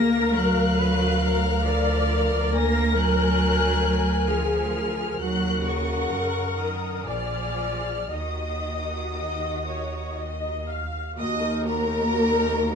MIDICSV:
0, 0, Header, 1, 6, 480
1, 0, Start_track
1, 0, Key_signature, -6, "minor"
1, 0, Tempo, 877193
1, 1392, Time_signature, 3, 2, 24, 8
1, 2350, Tempo, 909091
1, 3310, Tempo, 960000
1, 3790, Tempo, 1038062
1, 5230, Tempo, 996678
1, 5710, Tempo, 914634
1, 6532, End_track
2, 0, Start_track
2, 0, Title_t, "Violin section"
2, 0, Program_c, 0, 48
2, 0, Note_on_c, 0, 94, 116
2, 167, Note_off_c, 0, 94, 0
2, 185, Note_on_c, 0, 90, 112
2, 902, Note_on_c, 0, 89, 100
2, 903, Note_off_c, 0, 90, 0
2, 1389, Note_on_c, 0, 94, 122
2, 1392, Note_off_c, 0, 89, 0
2, 1625, Note_on_c, 0, 90, 121
2, 1627, Note_off_c, 0, 94, 0
2, 2346, Note_off_c, 0, 90, 0
2, 2348, Note_on_c, 0, 89, 93
2, 2826, Note_on_c, 0, 90, 109
2, 2829, Note_off_c, 0, 89, 0
2, 3063, Note_off_c, 0, 90, 0
2, 3067, Note_on_c, 0, 85, 94
2, 3537, Note_on_c, 0, 87, 75
2, 3542, Note_off_c, 0, 85, 0
2, 3785, Note_on_c, 0, 89, 88
2, 3786, Note_off_c, 0, 87, 0
2, 4257, Note_off_c, 0, 89, 0
2, 4268, Note_on_c, 0, 87, 92
2, 5476, Note_off_c, 0, 87, 0
2, 5709, Note_on_c, 0, 87, 101
2, 5931, Note_off_c, 0, 87, 0
2, 5954, Note_on_c, 0, 82, 111
2, 6532, Note_off_c, 0, 82, 0
2, 6532, End_track
3, 0, Start_track
3, 0, Title_t, "Violin section"
3, 0, Program_c, 1, 48
3, 0, Note_on_c, 1, 70, 91
3, 0, Note_on_c, 1, 77, 86
3, 1363, Note_off_c, 1, 77, 0
3, 1386, Note_on_c, 1, 80, 79
3, 2804, Note_off_c, 1, 70, 0
3, 2806, Note_off_c, 1, 80, 0
3, 2826, Note_on_c, 1, 70, 78
3, 2827, Note_on_c, 1, 78, 73
3, 3767, Note_off_c, 1, 70, 0
3, 3768, Note_off_c, 1, 78, 0
3, 3779, Note_on_c, 1, 74, 62
3, 3781, Note_on_c, 1, 68, 62
3, 4246, Note_off_c, 1, 74, 0
3, 4247, Note_off_c, 1, 68, 0
3, 4266, Note_on_c, 1, 66, 59
3, 4268, Note_on_c, 1, 75, 60
3, 5590, Note_off_c, 1, 66, 0
3, 5591, Note_off_c, 1, 75, 0
3, 5708, Note_on_c, 1, 75, 94
3, 5931, Note_off_c, 1, 75, 0
3, 5952, Note_on_c, 1, 70, 107
3, 6532, Note_off_c, 1, 70, 0
3, 6532, End_track
4, 0, Start_track
4, 0, Title_t, "Viola section"
4, 0, Program_c, 2, 48
4, 0, Note_on_c, 2, 70, 111
4, 423, Note_off_c, 2, 70, 0
4, 428, Note_on_c, 2, 71, 95
4, 659, Note_on_c, 2, 70, 93
4, 666, Note_off_c, 2, 71, 0
4, 901, Note_off_c, 2, 70, 0
4, 903, Note_on_c, 2, 74, 97
4, 1382, Note_off_c, 2, 74, 0
4, 1393, Note_on_c, 2, 70, 107
4, 2351, Note_off_c, 2, 70, 0
4, 2352, Note_on_c, 2, 68, 82
4, 2828, Note_on_c, 2, 66, 85
4, 2831, Note_off_c, 2, 68, 0
4, 3299, Note_off_c, 2, 66, 0
4, 3305, Note_on_c, 2, 70, 86
4, 3786, Note_on_c, 2, 74, 77
4, 3788, Note_off_c, 2, 70, 0
4, 4266, Note_on_c, 2, 75, 71
4, 4268, Note_off_c, 2, 74, 0
4, 4697, Note_off_c, 2, 75, 0
4, 4751, Note_on_c, 2, 75, 72
4, 4975, Note_off_c, 2, 75, 0
4, 4995, Note_on_c, 2, 73, 61
4, 5226, Note_off_c, 2, 73, 0
4, 5227, Note_on_c, 2, 75, 71
4, 5473, Note_on_c, 2, 77, 66
4, 5475, Note_off_c, 2, 75, 0
4, 5704, Note_on_c, 2, 58, 73
4, 5704, Note_on_c, 2, 66, 71
4, 5708, Note_off_c, 2, 77, 0
4, 5818, Note_off_c, 2, 58, 0
4, 5818, Note_off_c, 2, 66, 0
4, 5827, Note_on_c, 2, 63, 68
4, 5828, Note_on_c, 2, 70, 66
4, 5947, Note_on_c, 2, 58, 71
4, 5947, Note_on_c, 2, 66, 65
4, 5948, Note_off_c, 2, 63, 0
4, 5948, Note_off_c, 2, 70, 0
4, 6066, Note_on_c, 2, 63, 61
4, 6067, Note_off_c, 2, 58, 0
4, 6067, Note_off_c, 2, 66, 0
4, 6068, Note_on_c, 2, 70, 63
4, 6186, Note_on_c, 2, 58, 68
4, 6187, Note_off_c, 2, 63, 0
4, 6187, Note_on_c, 2, 66, 65
4, 6188, Note_off_c, 2, 70, 0
4, 6299, Note_off_c, 2, 58, 0
4, 6300, Note_off_c, 2, 66, 0
4, 6305, Note_on_c, 2, 70, 61
4, 6308, Note_on_c, 2, 63, 63
4, 6422, Note_on_c, 2, 58, 65
4, 6422, Note_on_c, 2, 66, 60
4, 6428, Note_off_c, 2, 70, 0
4, 6429, Note_off_c, 2, 63, 0
4, 6532, Note_off_c, 2, 58, 0
4, 6532, Note_off_c, 2, 66, 0
4, 6532, End_track
5, 0, Start_track
5, 0, Title_t, "Cello section"
5, 0, Program_c, 3, 48
5, 0, Note_on_c, 3, 58, 116
5, 165, Note_off_c, 3, 58, 0
5, 180, Note_on_c, 3, 54, 105
5, 898, Note_on_c, 3, 53, 89
5, 901, Note_off_c, 3, 54, 0
5, 1387, Note_on_c, 3, 58, 110
5, 1390, Note_off_c, 3, 53, 0
5, 1626, Note_off_c, 3, 58, 0
5, 1628, Note_on_c, 3, 54, 102
5, 2344, Note_on_c, 3, 53, 85
5, 2348, Note_off_c, 3, 54, 0
5, 2827, Note_off_c, 3, 53, 0
5, 2827, Note_on_c, 3, 54, 101
5, 3063, Note_off_c, 3, 54, 0
5, 3064, Note_on_c, 3, 49, 84
5, 3539, Note_on_c, 3, 51, 67
5, 3541, Note_off_c, 3, 49, 0
5, 3782, Note_off_c, 3, 51, 0
5, 3787, Note_on_c, 3, 53, 73
5, 4262, Note_on_c, 3, 51, 65
5, 4268, Note_off_c, 3, 53, 0
5, 5454, Note_off_c, 3, 51, 0
5, 5709, Note_on_c, 3, 39, 91
5, 6532, Note_off_c, 3, 39, 0
5, 6532, End_track
6, 0, Start_track
6, 0, Title_t, "Double bass section"
6, 0, Program_c, 4, 48
6, 0, Note_on_c, 4, 38, 96
6, 2809, Note_off_c, 4, 38, 0
6, 2828, Note_on_c, 4, 39, 85
6, 3299, Note_off_c, 4, 39, 0
6, 3309, Note_on_c, 4, 42, 69
6, 3788, Note_on_c, 4, 34, 68
6, 3789, Note_off_c, 4, 42, 0
6, 4259, Note_off_c, 4, 34, 0
6, 4268, Note_on_c, 4, 39, 68
6, 5591, Note_off_c, 4, 39, 0
6, 5709, Note_on_c, 4, 39, 89
6, 6532, Note_off_c, 4, 39, 0
6, 6532, End_track
0, 0, End_of_file